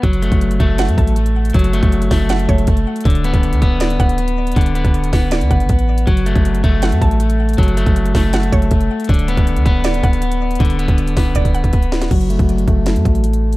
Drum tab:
CC |--------------------------------|--------------------------------|--------------------------------|--------------------------------|
HH |x-x-x-x-x-x-x---x-x-x-x-x-x---xx|xxx-x-x-x-x-o---x-x-x-x-x-x---xx|xxx-x-x-x-x-x---x-x-x-x-x-x---xx|xxx-x-x-x-x-o---x-x-x-x-x-x---x-|
SD |----------------o---------------|------------o---o---------------|----------------o---------------|------------o---o---------------|
BD |o-----o-----o-------o-----------|o-----o-----o-------o---o-------|o-----o-----o-------o-----------|o-----o-----o-------o---o-------|

CC |--------------------------------|--------------------------------|--------------------------------|--------------------------------|
HH |x-x-x-x-x-x-x---x-x-x-x-x-x---xx|xxx-x-x-x-x-o---x-x-x-x-x-x---xx|xxx-x-x-x-x-x---x-x-x-x-x-x---xx|xxx-x-x-x-x-o---x-x-x-x-x-x---x-|
SD |----------------o---------------|------------o---o---------------|----------------o---------------|------------o---------------o-o-|
BD |o-----o-----o-------o-----------|o-----o-----o-------o---o-------|o-----o-----o-------o-----------|o-----o-----o---o-o---o-o-------|

CC |x-------------------------------|
HH |x-x-x-x-x-x-x---x-x-x-x-x-x---x-|
SD |----------------o---------------|
BD |o-----o-----o-------o-----------|